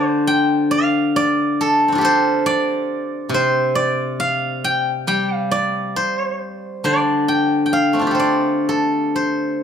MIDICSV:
0, 0, Header, 1, 2, 480
1, 0, Start_track
1, 0, Tempo, 882353
1, 1806, Time_signature, 4, 2, 24, 8
1, 4208, Tempo, 920245
1, 4688, Tempo, 990099
1, 5161, End_track
2, 0, Start_track
2, 0, Title_t, "Guzheng"
2, 0, Program_c, 0, 107
2, 0, Note_on_c, 0, 50, 50
2, 0, Note_on_c, 0, 72, 59
2, 0, Note_on_c, 0, 74, 78
2, 38, Note_off_c, 0, 72, 0
2, 38, Note_off_c, 0, 74, 0
2, 38, Note_on_c, 0, 72, 78
2, 149, Note_on_c, 0, 79, 83
2, 386, Note_on_c, 0, 77, 82
2, 630, Note_off_c, 0, 72, 0
2, 632, Note_on_c, 0, 74, 88
2, 875, Note_on_c, 0, 69, 75
2, 994, Note_off_c, 0, 79, 0
2, 1024, Note_on_c, 0, 60, 29
2, 1047, Note_on_c, 0, 62, 37
2, 1062, Note_on_c, 0, 65, 40
2, 1078, Note_on_c, 0, 67, 41
2, 1092, Note_off_c, 0, 69, 0
2, 1095, Note_on_c, 0, 69, 51
2, 1113, Note_on_c, 0, 72, 87
2, 1293, Note_off_c, 0, 77, 0
2, 1322, Note_off_c, 0, 50, 0
2, 1336, Note_off_c, 0, 74, 0
2, 1339, Note_on_c, 0, 74, 95
2, 1792, Note_on_c, 0, 48, 59
2, 1816, Note_off_c, 0, 72, 0
2, 1818, Note_on_c, 0, 72, 79
2, 2040, Note_off_c, 0, 74, 0
2, 2042, Note_on_c, 0, 74, 79
2, 2284, Note_on_c, 0, 77, 92
2, 2288, Note_off_c, 0, 69, 0
2, 2359, Note_off_c, 0, 67, 0
2, 2437, Note_off_c, 0, 65, 0
2, 2526, Note_on_c, 0, 79, 90
2, 2570, Note_off_c, 0, 62, 0
2, 2659, Note_off_c, 0, 60, 0
2, 2760, Note_off_c, 0, 79, 0
2, 2760, Note_on_c, 0, 55, 54
2, 2762, Note_on_c, 0, 79, 84
2, 2897, Note_off_c, 0, 72, 0
2, 2909, Note_off_c, 0, 77, 0
2, 2909, Note_off_c, 0, 79, 0
2, 2909, Note_on_c, 0, 77, 84
2, 2998, Note_off_c, 0, 74, 0
2, 3000, Note_on_c, 0, 74, 76
2, 3239, Note_off_c, 0, 48, 0
2, 3244, Note_on_c, 0, 72, 82
2, 3608, Note_off_c, 0, 77, 0
2, 3722, Note_off_c, 0, 74, 0
2, 3722, Note_on_c, 0, 50, 54
2, 3725, Note_on_c, 0, 74, 72
2, 3962, Note_on_c, 0, 79, 73
2, 4164, Note_off_c, 0, 79, 0
2, 4166, Note_on_c, 0, 79, 53
2, 4204, Note_on_c, 0, 77, 68
2, 4210, Note_off_c, 0, 55, 0
2, 4310, Note_on_c, 0, 57, 32
2, 4317, Note_on_c, 0, 60, 31
2, 4318, Note_off_c, 0, 72, 0
2, 4343, Note_on_c, 0, 62, 33
2, 4353, Note_on_c, 0, 65, 38
2, 4382, Note_on_c, 0, 67, 37
2, 4403, Note_on_c, 0, 69, 39
2, 4422, Note_on_c, 0, 72, 46
2, 4446, Note_off_c, 0, 74, 0
2, 4448, Note_on_c, 0, 74, 64
2, 4702, Note_off_c, 0, 69, 0
2, 4704, Note_on_c, 0, 69, 61
2, 4929, Note_off_c, 0, 72, 0
2, 4931, Note_on_c, 0, 72, 62
2, 4958, Note_off_c, 0, 79, 0
2, 5047, Note_off_c, 0, 77, 0
2, 5161, Note_off_c, 0, 50, 0
2, 5161, Note_off_c, 0, 57, 0
2, 5161, Note_off_c, 0, 60, 0
2, 5161, Note_off_c, 0, 62, 0
2, 5161, Note_off_c, 0, 65, 0
2, 5161, Note_off_c, 0, 67, 0
2, 5161, Note_off_c, 0, 69, 0
2, 5161, Note_off_c, 0, 72, 0
2, 5161, Note_off_c, 0, 74, 0
2, 5161, End_track
0, 0, End_of_file